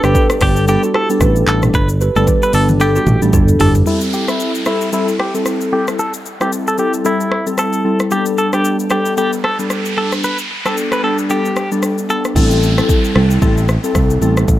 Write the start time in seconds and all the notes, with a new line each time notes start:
0.03 G1 G3 B3 D4 G4 A4 B4 D5, cross-stick, shaker
0.15 G4 B4, kick, shaker
0.30 cross-stick, shaker
0.41 G1 G3 B3 D4 G4 A4, kick, cross-stick, open hi-hat, shaker
0.56 shaker
0.67 G3 B3 D4 G4 A4, shaker
0.83 F#4 A4, shaker
0.94 E4 G4 A4, cross-stick
1.10 G3 B3 D4 A4, shaker
1.21 A1 G4 B4, kick, cross-stick, shaker
1.36 shaker
1.47 A1 G3 B3 D4 A4, clap, shaker
1.63 cross-stick, mid tom, shaker
1.74 G1 D4 A4 B4, kick, high tom, shaker
1.89 shaker
2.01 G4 B4, shaker
2.16 G1 G3 B3 D4 A4 B4 D5, high tom, shaker
2.27 G4 B4, kick, mid tom, shaker
2.43 B4, shaker
2.53 G1 G3 B3 D4 A4, open hi-hat, shaker
2.69 mid tom, shaker
2.80 G3 B3 D4 G4 A4, shaker
2.96 F#4 A4, shaker
3.07 A1 E4 G4, mid tom, shaker
3.22 A1 G3 B3 D4 A4, shaker
3.33 G1 D4 A4, kick, floor tom, shaker
3.48 floor tom, shaker
3.59 G1 G3 B3 D4 E4 G4 A4, floor tom, open hi-hat, shaker
3.75 floor tom, shaker
3.86 G3 C4 E4 A4, downlifter, shaker
4.01 shaker
4.13 G4, shaker
4.28 G3 C4 E4 A4, cross-stick, shaker
4.40 shaker
4.55 shaker
4.66 G3 C4 E4 A4, cross-stick, shaker
4.81 shaker
4.92 G3 C4 E4 A4, shaker
5.08 shaker
5.20 G4, cross-stick
5.34 G3 C4 E4 A4, shaker
5.46 cross-stick, shaker
5.61 shaker
5.72 G3 C4 E4 G4 A4
5.88 cross-stick, shaker
5.99 A4, shaker
6.14 shaker
6.26 shaker
6.40 G3 C4 E4 G4 A4, cross-stick, shaker
6.53 shaker
6.67 A4, shaker
6.78 G3 C4 E4 G4 A4, shaker
6.93 shaker
7.05 G3 C4 E4 A4, shaker
7.20 shaker
7.32 cross-stick
7.46 G3 C4 E4 A4, shaker
7.58 A4, cross-stick, shaker
7.73 shaker
7.84 G3 C4 E4 A4
8.00 cross-stick, shaker
8.11 G3 B3 D4 G4 A4, noise sweep, shaker
8.26 shaker
8.38 A4, shaker
8.53 G3 B3 D4 G4 A4, cross-stick, shaker
8.65 shaker
8.79 shaker
8.90 G3 B3 D4 G4 A4, cross-stick, shaker
9.06 shaker
9.17 G3 B3 D4 G4 A4, shaker
9.33 shaker
9.44 A4, cross-stick
9.59 G3 B3 D4 A4, shaker
9.70 cross-stick, shaker
9.85 shaker
9.97 G3 B3 D4 A4
10.12 cross-stick, shaker
10.23 B4, shaker
10.38 shaker
10.65 G3 B3 D4 A4, cross-stick, shaker
10.77 shaker
10.92 B4, cross-stick, shaker
11.03 G3 B3 D4 A4
11.18 shaker
11.29 G3 B3 D4 G4 A4, shaker
11.45 shaker
11.56 cross-stick, shaker
11.71 G3 B3 D4 A4, shaker
11.83 cross-stick, shaker
11.98 shaker
12.09 G3 B3 D4 A4, shaker
12.25 cross-stick, shaker
12.35 A1 G3 C4 E4 A4, kick, crash, downlifter, shaker
12.51 shaker
12.63 shaker
12.77 G3 C4 E4 A4, cross-stick, shaker
12.89 kick, shaker
13.04 shaker
13.15 C2 G3 C4 E4 A4, cross-stick
13.31 shaker
13.42 A1 G3 C4 E4 A4, kick, shaker
13.58 shaker
13.69 cross-stick, shaker
13.84 G3 C4 E4 A4, shaker
13.95 C2, kick, cross-stick, shaker
14.10 shaker
14.21 A1 G3 C4 E4 A4, shaker
14.37 cross-stick, shaker
14.48 A1, kick, shaker